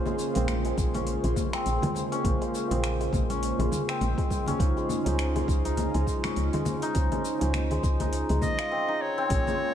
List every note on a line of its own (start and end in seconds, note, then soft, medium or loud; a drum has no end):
0.00 8.68 C#3 medium
0.00 4.56 G#3 medium
0.00 0.31 A#3 medium
0.00 4.56 A#3 medium
0.00 0.31 C#4 medium
0.00 0.42 C#4 medium
0.00 2.20 D#4 medium
0.00 0.31 F4 medium
0.00 4.56 F4 medium
0.00 0.32 G#4 medium
0.00 2.21 G#4 medium
0.00 0.32 C5 loud
0.00 8.68 C5 medium
0.06 0.64 G#3 medium
0.06 low conga medium
0.06 shaker soft
0.19 shaker medium
0.33 0.73 A#1 medium
0.33 2.21 A#3 medium
0.33 1.01 C4 medium
0.33 2.22 F4 medium
0.33 2.22 G#4 medium
0.33 open hi-hat soft
0.33 high conga medium
0.33 shaker soft
0.37 2.23 C5 medium
0.48 finger snap medium
0.48 open hi-hat medium
0.48 low conga medium
0.48 shaker soft
0.65 1.23 G#3 medium
0.65 open hi-hat soft
0.65 shaker soft
0.78 1.17 A#1 medium
0.78 kick loud
0.78 shaker medium
0.94 1.59 C#4 medium
0.94 open hi-hat soft
0.94 muted conga soft
0.94 high conga medium
0.94 low conga medium
0.94 shaker soft
1.07 open hi-hat soft
1.07 shaker soft
1.24 1.33 A#1 medium
1.24 1.81 G#3 medium
1.24 open hi-hat soft
1.24 shaker soft
1.36 kick medium
1.36 low conga medium
1.36 shaker medium
1.53 2.18 C4 loud
1.53 finger snap medium
1.53 open hi-hat soft
1.53 muted conga medium
1.53 shaker soft
1.66 1.79 A#1 medium
1.66 open hi-hat soft
1.66 shaker soft
1.82 2.40 G#3 medium
1.82 open hi-hat soft
1.82 high conga medium
1.82 low conga loud
1.82 low conga medium
1.82 shaker soft
1.95 muted conga medium
1.95 low conga medium
1.95 shaker medium
2.12 2.77 C#4 loud
2.12 open hi-hat soft
2.12 shaker soft
2.24 2.37 A#1 medium
2.24 2.67 A#3 medium
2.24 2.67 F4 medium
2.24 2.67 G#4 medium
2.24 2.67 C5 medium
2.24 kick loud
2.24 open hi-hat medium
2.24 low conga medium
2.24 shaker soft
2.41 2.99 G#3 medium
2.41 open hi-hat soft
2.41 shaker soft
2.55 shaker medium
2.69 3.08 A#1 medium
2.69 4.56 A#3 medium
2.69 3.36 C4 medium
2.69 4.57 F4 medium
2.69 4.57 G#4 medium
2.69 open hi-hat soft
2.69 high conga medium
2.69 low conga medium
2.69 shaker soft
2.73 4.58 C5 medium
2.84 finger snap medium
2.84 open hi-hat medium
2.84 shaker soft
3.00 3.58 G#3 medium
3.00 open hi-hat soft
3.00 shaker soft
3.13 3.52 A#1 medium
3.13 kick medium
3.13 low conga medium
3.13 shaker medium
3.30 3.95 C#4 medium
3.30 open hi-hat soft
3.30 muted conga medium
3.30 high conga medium
3.30 shaker soft
3.43 open hi-hat medium
3.43 shaker soft
3.59 3.68 A#1 medium
3.59 4.17 G#3 medium
3.59 open hi-hat soft
3.59 high conga medium
3.59 low conga medium
3.59 shaker soft
3.72 high conga medium
3.72 low conga medium
3.72 shaker medium
3.89 4.53 C4 loud
3.89 finger snap medium
3.89 open hi-hat soft
3.89 shaker soft
4.01 4.14 A#1 medium
4.01 open hi-hat medium
4.01 low conga medium
4.01 shaker soft
4.18 4.65 G#3 medium
4.18 kick loud
4.18 open hi-hat soft
4.18 shaker soft
4.30 kick medium
4.30 muted conga medium
4.30 high conga medium
4.30 shaker medium
4.46 5.06 C#4 loud
4.46 open hi-hat soft
4.46 low conga medium
4.46 shaker soft
4.59 4.73 C#2 medium
4.59 8.68 G#3 medium
4.59 5.01 C#4 medium
4.59 5.02 D#4 medium
4.59 8.68 D#4 medium
4.59 5.02 F4 medium
4.59 8.68 F4 medium
4.59 5.02 G#4 medium
4.59 5.02 C5 loud
4.59 kick loud
4.59 open hi-hat medium
4.59 shaker soft
4.77 5.34 G#3 medium
4.77 shaker soft
4.89 low conga medium
4.89 shaker medium
5.04 5.43 C#2 medium
5.04 6.91 C#4 medium
5.04 6.23 C#4 medium
5.04 6.92 D#4 medium
5.04 6.92 F4 medium
5.04 6.93 G#4 medium
5.04 open hi-hat soft
5.04 high conga medium
5.04 shaker soft
5.08 6.93 C5 medium
5.19 finger snap medium
5.19 open hi-hat medium
5.19 shaker soft
5.35 5.93 G#3 medium
5.35 open hi-hat soft
5.35 low conga medium
5.35 shaker soft
5.48 5.88 C#2 medium
5.48 kick loud
5.48 shaker medium
5.65 6.82 D#4 medium
5.65 open hi-hat soft
5.65 muted conga medium
5.65 high conga medium
5.65 shaker soft
5.77 open hi-hat medium
5.77 low conga medium
5.77 shaker soft
5.94 6.04 C#2 loud
5.94 6.52 G#3 medium
5.94 open hi-hat soft
5.94 shaker soft
6.07 kick medium
6.07 shaker medium
6.24 7.41 C#4 loud
6.24 finger snap medium
6.24 open hi-hat soft
6.24 muted conga medium
6.24 low conga medium
6.24 shaker soft
6.36 6.49 C#2 medium
6.36 open hi-hat medium
6.36 shaker soft
6.53 7.11 G#3 medium
6.53 open hi-hat soft
6.53 high conga medium
6.53 low conga loud
6.53 shaker soft
6.65 muted conga medium
6.65 low conga medium
6.65 shaker medium
6.82 8.00 D#4 loud
6.82 open hi-hat soft
6.82 shaker soft
6.94 7.08 C#2 medium
6.94 7.37 C#4 medium
6.94 7.37 D#4 medium
6.94 7.37 F4 medium
6.94 7.38 G#4 medium
6.94 7.38 C5 loud
6.94 kick loud
6.94 open hi-hat medium
6.94 shaker soft
7.12 7.70 G#3 medium
7.12 open hi-hat soft
7.12 low conga medium
7.12 shaker soft
7.25 shaker medium
7.39 7.79 C#2 medium
7.39 8.70 C#4 medium
7.39 8.78 C#4 medium
7.39 8.71 D#4 medium
7.39 8.71 F4 medium
7.39 8.72 G#4 medium
7.39 open hi-hat soft
7.39 high conga medium
7.39 shaker soft
7.43 8.72 C5 medium
7.54 finger snap medium
7.54 open hi-hat medium
7.54 low conga medium
7.54 shaker soft
7.71 8.29 G#3 medium
7.71 open hi-hat soft
7.71 low conga medium
7.71 shaker soft
7.83 8.23 C#2 medium
7.83 kick loud
7.83 shaker medium
8.00 8.88 D#4 medium
8.00 open hi-hat soft
8.00 muted conga medium
8.00 high conga medium
8.00 low conga medium
8.00 shaker soft
8.13 open hi-hat medium
8.13 shaker soft
8.29 8.39 C#2 medium
8.29 9.36 G#3 medium
8.29 open hi-hat soft
8.29 high conga medium
8.29 shaker soft
8.42 9.03 D#5 loud
8.42 kick medium
8.42 high conga medium
8.42 low conga medium
8.42 shaker medium
8.59 9.74 F4 medium
8.59 finger snap medium
8.59 open hi-hat soft
8.59 shaker soft
8.72 9.17 C4 loud
8.88 9.74 D#4 loud
9.01 9.74 C#5 loud
9.18 9.74 C4 loud
9.29 9.43 A#1 medium
9.29 9.74 G#3 medium
9.29 9.72 A#3 medium
9.29 9.74 A#3 medium
9.29 9.72 C#4 medium
9.29 9.72 F4 medium
9.29 9.74 F4 medium
9.29 9.73 G#4 medium
9.29 9.73 C#5 loud
9.29 kick loud
9.29 open hi-hat medium
9.29 shaker medium
9.47 9.74 G#3 medium
9.47 low conga medium
9.47 shaker soft